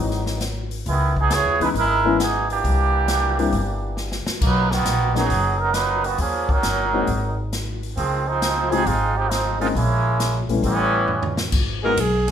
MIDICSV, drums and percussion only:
0, 0, Header, 1, 2, 480
1, 0, Start_track
1, 0, Key_signature, 5, "minor"
1, 0, Tempo, 444444
1, 927, Time_signature, 4, 2, 24, 8
1, 13297, End_track
2, 0, Start_track
2, 0, Title_t, "Drums"
2, 117, Note_on_c, 9, 38, 28
2, 225, Note_off_c, 9, 38, 0
2, 284, Note_on_c, 9, 38, 49
2, 392, Note_off_c, 9, 38, 0
2, 438, Note_on_c, 9, 42, 54
2, 439, Note_on_c, 9, 38, 64
2, 546, Note_off_c, 9, 42, 0
2, 547, Note_off_c, 9, 38, 0
2, 766, Note_on_c, 9, 46, 44
2, 874, Note_off_c, 9, 46, 0
2, 927, Note_on_c, 9, 46, 49
2, 930, Note_on_c, 9, 36, 34
2, 1035, Note_off_c, 9, 46, 0
2, 1038, Note_off_c, 9, 36, 0
2, 1258, Note_on_c, 9, 36, 63
2, 1366, Note_off_c, 9, 36, 0
2, 1409, Note_on_c, 9, 42, 59
2, 1410, Note_on_c, 9, 38, 72
2, 1517, Note_off_c, 9, 42, 0
2, 1518, Note_off_c, 9, 38, 0
2, 1739, Note_on_c, 9, 46, 43
2, 1847, Note_off_c, 9, 46, 0
2, 1890, Note_on_c, 9, 36, 34
2, 1893, Note_on_c, 9, 46, 49
2, 1998, Note_off_c, 9, 36, 0
2, 2001, Note_off_c, 9, 46, 0
2, 2374, Note_on_c, 9, 42, 54
2, 2376, Note_on_c, 9, 38, 64
2, 2482, Note_off_c, 9, 42, 0
2, 2484, Note_off_c, 9, 38, 0
2, 2699, Note_on_c, 9, 46, 41
2, 2807, Note_off_c, 9, 46, 0
2, 2852, Note_on_c, 9, 36, 32
2, 2856, Note_on_c, 9, 46, 48
2, 2960, Note_off_c, 9, 36, 0
2, 2964, Note_off_c, 9, 46, 0
2, 3326, Note_on_c, 9, 42, 57
2, 3327, Note_on_c, 9, 38, 75
2, 3434, Note_off_c, 9, 42, 0
2, 3435, Note_off_c, 9, 38, 0
2, 3659, Note_on_c, 9, 46, 43
2, 3767, Note_off_c, 9, 46, 0
2, 3806, Note_on_c, 9, 46, 49
2, 3808, Note_on_c, 9, 36, 33
2, 3914, Note_off_c, 9, 46, 0
2, 3916, Note_off_c, 9, 36, 0
2, 4288, Note_on_c, 9, 38, 47
2, 4396, Note_off_c, 9, 38, 0
2, 4447, Note_on_c, 9, 38, 59
2, 4555, Note_off_c, 9, 38, 0
2, 4607, Note_on_c, 9, 38, 80
2, 4715, Note_off_c, 9, 38, 0
2, 4767, Note_on_c, 9, 36, 73
2, 4768, Note_on_c, 9, 49, 74
2, 4875, Note_off_c, 9, 36, 0
2, 4876, Note_off_c, 9, 49, 0
2, 5093, Note_on_c, 9, 38, 56
2, 5201, Note_off_c, 9, 38, 0
2, 5242, Note_on_c, 9, 42, 62
2, 5243, Note_on_c, 9, 38, 70
2, 5350, Note_off_c, 9, 42, 0
2, 5351, Note_off_c, 9, 38, 0
2, 5567, Note_on_c, 9, 38, 51
2, 5675, Note_off_c, 9, 38, 0
2, 5722, Note_on_c, 9, 46, 52
2, 5725, Note_on_c, 9, 36, 34
2, 5830, Note_off_c, 9, 46, 0
2, 5833, Note_off_c, 9, 36, 0
2, 6198, Note_on_c, 9, 42, 51
2, 6199, Note_on_c, 9, 38, 65
2, 6306, Note_off_c, 9, 42, 0
2, 6307, Note_off_c, 9, 38, 0
2, 6524, Note_on_c, 9, 46, 40
2, 6632, Note_off_c, 9, 46, 0
2, 6675, Note_on_c, 9, 46, 53
2, 6682, Note_on_c, 9, 36, 35
2, 6783, Note_off_c, 9, 46, 0
2, 6790, Note_off_c, 9, 36, 0
2, 7008, Note_on_c, 9, 36, 72
2, 7116, Note_off_c, 9, 36, 0
2, 7161, Note_on_c, 9, 42, 60
2, 7162, Note_on_c, 9, 38, 76
2, 7269, Note_off_c, 9, 42, 0
2, 7270, Note_off_c, 9, 38, 0
2, 7637, Note_on_c, 9, 46, 49
2, 7646, Note_on_c, 9, 36, 33
2, 7745, Note_off_c, 9, 46, 0
2, 7754, Note_off_c, 9, 36, 0
2, 8128, Note_on_c, 9, 42, 54
2, 8129, Note_on_c, 9, 38, 61
2, 8236, Note_off_c, 9, 42, 0
2, 8237, Note_off_c, 9, 38, 0
2, 8457, Note_on_c, 9, 46, 42
2, 8565, Note_off_c, 9, 46, 0
2, 8611, Note_on_c, 9, 36, 34
2, 8612, Note_on_c, 9, 46, 50
2, 8719, Note_off_c, 9, 36, 0
2, 8720, Note_off_c, 9, 46, 0
2, 9094, Note_on_c, 9, 42, 61
2, 9095, Note_on_c, 9, 38, 80
2, 9202, Note_off_c, 9, 42, 0
2, 9203, Note_off_c, 9, 38, 0
2, 9418, Note_on_c, 9, 46, 42
2, 9526, Note_off_c, 9, 46, 0
2, 9571, Note_on_c, 9, 36, 34
2, 9574, Note_on_c, 9, 46, 48
2, 9679, Note_off_c, 9, 36, 0
2, 9682, Note_off_c, 9, 46, 0
2, 10058, Note_on_c, 9, 42, 53
2, 10059, Note_on_c, 9, 38, 67
2, 10166, Note_off_c, 9, 42, 0
2, 10167, Note_off_c, 9, 38, 0
2, 10382, Note_on_c, 9, 46, 42
2, 10490, Note_off_c, 9, 46, 0
2, 10536, Note_on_c, 9, 36, 35
2, 10544, Note_on_c, 9, 46, 48
2, 10644, Note_off_c, 9, 36, 0
2, 10652, Note_off_c, 9, 46, 0
2, 11015, Note_on_c, 9, 42, 62
2, 11016, Note_on_c, 9, 38, 70
2, 11123, Note_off_c, 9, 42, 0
2, 11124, Note_off_c, 9, 38, 0
2, 11332, Note_on_c, 9, 46, 43
2, 11440, Note_off_c, 9, 46, 0
2, 11485, Note_on_c, 9, 46, 51
2, 11488, Note_on_c, 9, 36, 35
2, 11593, Note_off_c, 9, 46, 0
2, 11596, Note_off_c, 9, 36, 0
2, 11963, Note_on_c, 9, 43, 47
2, 12071, Note_off_c, 9, 43, 0
2, 12124, Note_on_c, 9, 43, 64
2, 12232, Note_off_c, 9, 43, 0
2, 12284, Note_on_c, 9, 38, 89
2, 12392, Note_off_c, 9, 38, 0
2, 12443, Note_on_c, 9, 49, 76
2, 12446, Note_on_c, 9, 36, 72
2, 12551, Note_off_c, 9, 49, 0
2, 12554, Note_off_c, 9, 36, 0
2, 12928, Note_on_c, 9, 36, 27
2, 12931, Note_on_c, 9, 44, 61
2, 12931, Note_on_c, 9, 51, 74
2, 13036, Note_off_c, 9, 36, 0
2, 13039, Note_off_c, 9, 44, 0
2, 13039, Note_off_c, 9, 51, 0
2, 13261, Note_on_c, 9, 51, 45
2, 13262, Note_on_c, 9, 38, 45
2, 13297, Note_off_c, 9, 38, 0
2, 13297, Note_off_c, 9, 51, 0
2, 13297, End_track
0, 0, End_of_file